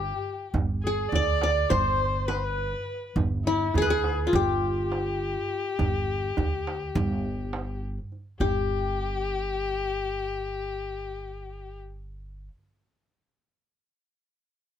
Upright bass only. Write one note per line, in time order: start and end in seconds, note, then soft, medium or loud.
0.00 0.10 G1 loud
0.54 1.05 G1 medium
1.12 1.63 D2 medium
1.71 2.73 G1 loud
3.16 3.67 G1 medium
3.75 4.26 D2 medium
4.33 5.35 G1 loud
5.79 6.30 G1 medium
6.38 6.88 D2 medium
6.95 7.97 G1 loud
8.40 12.48 G1 medium